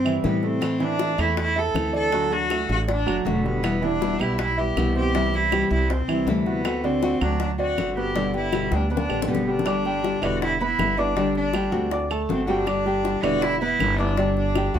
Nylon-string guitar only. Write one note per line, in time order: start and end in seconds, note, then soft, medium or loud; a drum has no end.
0.05 0.24 G3 soft
0.05 0.24 C4 soft
0.05 0.23 E4 medium
0.24 0.61 C3 medium
0.24 0.60 E3 medium
0.24 0.62 G3 medium
0.24 0.61 C4 medium
0.24 0.61 E4 medium
0.61 0.80 E3 medium
0.61 0.80 A3 medium
0.61 0.79 C4 medium
0.61 0.79 E4 medium
0.80 0.98 A3 soft
0.80 0.99 C4 soft
0.80 0.99 E4 medium
0.99 1.18 E3 medium
0.99 1.18 A3 medium
0.99 1.18 C4 medium
0.99 1.17 E4 medium
1.18 1.36 A3 soft
1.18 1.36 C4 soft
1.18 1.36 E4 soft
1.37 muted nylon-string guitar stroke medium
1.56 1.74 A3 soft
1.56 1.74 C4 soft
1.56 1.74 E4 medium
1.74 2.11 E3 medium
1.74 2.11 A3 medium
1.74 2.12 C4 medium
1.74 2.13 E4 medium
2.12 2.31 D3 medium
2.12 2.31 A3 medium
2.12 2.30 D4 medium
2.12 2.29 F#4 medium
2.30 2.49 A3 soft
2.30 2.49 D4 soft
2.30 2.49 F#4 soft
2.49 2.68 D3 medium
2.49 2.69 A3 medium
2.49 2.68 D4 medium
2.49 2.67 F#4 medium
2.68 2.87 A3 soft
2.68 2.87 D4 soft
2.68 2.87 F#4 soft
2.87 muted nylon-string guitar stroke medium
3.06 3.24 A3 soft
3.06 3.25 D4 soft
3.06 3.25 F#4 medium
3.25 3.62 D3 medium
3.25 3.63 A3 medium
3.25 3.63 D4 medium
3.25 3.63 F#4 medium
3.63 3.81 B2 medium
3.63 3.82 E3 medium
3.63 3.82 G3 medium
3.63 3.82 B3 medium
3.63 3.81 E4 medium
3.82 4.00 G3 soft
3.82 4.01 B3 soft
3.82 4.00 E4 soft
4.01 4.19 B2 medium
4.01 4.19 E3 medium
4.01 4.20 G3 medium
4.01 4.19 B3 medium
4.01 4.18 E4 medium
4.19 4.37 G3 soft
4.19 4.37 B3 soft
4.19 4.37 E4 soft
4.38 muted nylon-string guitar stroke medium
4.58 4.76 G3 soft
4.58 4.76 B3 soft
4.58 4.76 E4 soft
4.77 5.14 B2 medium
4.77 5.13 E3 medium
4.77 5.14 G3 medium
4.77 5.14 B3 medium
4.77 5.14 E4 medium
5.14 5.32 C3 medium
5.14 5.33 E3 medium
5.14 5.33 G3 medium
5.14 5.33 C4 medium
5.14 5.32 E4 medium
5.34 5.51 G3 soft
5.34 5.52 C4 soft
5.34 5.51 E4 soft
5.52 5.70 C3 medium
5.52 5.70 E3 medium
5.52 5.70 G3 medium
5.52 5.71 C4 medium
5.52 5.70 E4 medium
5.71 5.89 G3 soft
5.71 5.90 C4 soft
5.71 5.89 E4 medium
5.90 muted nylon-string guitar stroke medium
6.09 6.27 G3 soft
6.09 6.27 C4 soft
6.09 6.27 E4 medium
6.27 6.64 C3 medium
6.27 6.64 E3 medium
6.27 6.64 G3 medium
6.27 6.64 C4 medium
6.27 6.65 E4 medium
6.64 6.83 D3 medium
6.64 6.83 A3 medium
6.64 6.83 C4 medium
6.64 6.82 F#4 medium
6.84 7.01 A3 soft
6.84 7.02 C4 soft
6.84 7.02 F#4 medium
7.02 7.20 D3 medium
7.02 7.21 A3 medium
7.02 7.20 C4 medium
7.02 7.19 F#4 medium
7.21 7.39 A3 soft
7.21 7.39 C4 soft
7.21 7.39 F#4 medium
7.39 muted nylon-string guitar stroke medium
7.58 7.77 A3 soft
7.58 7.77 C4 soft
7.58 7.77 F#4 medium
7.77 8.14 D3 medium
7.77 8.15 A3 medium
7.77 8.15 C4 medium
7.77 8.15 F#4 medium
8.14 8.33 B2 medium
8.14 8.33 D3 medium
8.14 8.34 G3 medium
8.14 8.33 B3 medium
8.14 8.32 G4 medium
8.33 8.52 G3 soft
8.33 8.52 B3 soft
8.33 8.52 G4 medium
8.52 8.71 B2 medium
8.52 8.71 D3 medium
8.52 8.71 G3 medium
8.52 8.71 B3 medium
8.52 8.70 G4 medium
8.71 8.89 G3 soft
8.71 8.89 B3 soft
8.71 8.90 G4 medium
8.90 muted nylon-string guitar stroke medium
9.09 9.27 G3 soft
9.09 9.28 B3 soft
9.09 9.27 G4 medium
9.27 9.65 B2 medium
9.27 9.63 D3 medium
9.27 9.65 G3 medium
9.27 9.66 B3 medium
9.27 9.65 G4 medium
9.65 10.01 D3 medium
9.65 10.02 G3 medium
9.65 10.02 D4 medium
9.65 10.03 G4 medium
10.02 10.21 D3 soft
10.02 10.21 G3 medium
10.02 10.22 D4 soft
10.02 10.21 G4 medium
10.22 10.59 D3 medium
10.22 10.60 G3 medium
10.22 10.59 B3 medium
10.22 10.59 E4 medium
10.60 muted nylon-string guitar stroke medium
10.79 10.97 D3 medium
10.79 10.97 G3 soft
10.79 10.97 B3 medium
10.79 10.96 E4 medium
10.97 11.15 D3 medium
10.97 11.16 G3 medium
10.97 11.16 B3 medium
10.97 11.16 E4 medium
11.16 11.52 D3 medium
11.16 11.53 G3 medium
11.16 11.53 D4 medium
11.16 11.54 G4 medium
11.54 11.72 D3 soft
11.54 11.72 G3 soft
11.54 11.72 D4 medium
11.54 11.71 G4 medium
11.72 12.09 A3 medium
11.72 12.09 C4 medium
11.72 12.09 F#4 medium
12.10 muted nylon-string guitar stroke medium
12.29 12.47 D3 medium
12.29 12.48 A3 soft
12.29 12.47 C4 medium
12.29 12.46 F#4 medium
12.47 12.66 A3 medium
12.47 12.67 C4 medium
12.47 12.66 F#4 medium
12.66 13.03 D3 medium
12.66 13.04 G3 medium
12.66 13.04 D4 medium
12.66 13.04 G4 medium
13.04 13.23 D3 medium
13.04 13.23 G3 soft
13.04 13.23 D4 medium
13.04 13.23 G4 medium
13.23 13.60 D3 medium
13.23 13.60 G3 medium
13.23 13.61 B3 medium
13.23 13.60 E4 medium
13.61 muted nylon-string guitar stroke medium
13.80 13.98 D3 medium
13.80 13.98 G3 medium
13.80 13.98 B3 medium
13.80 13.98 E4 medium
13.99 14.16 D3 medium
13.99 14.16 G3 medium
13.99 14.17 B3 medium
13.99 14.17 E4 medium
14.17 14.53 D3 medium
14.17 14.54 G3 medium
14.17 14.54 D4 medium
14.17 14.55 G4 medium
14.55 14.73 D3 soft
14.55 14.73 G3 soft
14.55 14.74 D4 medium
14.55 14.74 G4 soft
14.74 14.79 A3 medium
14.74 14.79 C4 medium
14.74 14.79 F#4 medium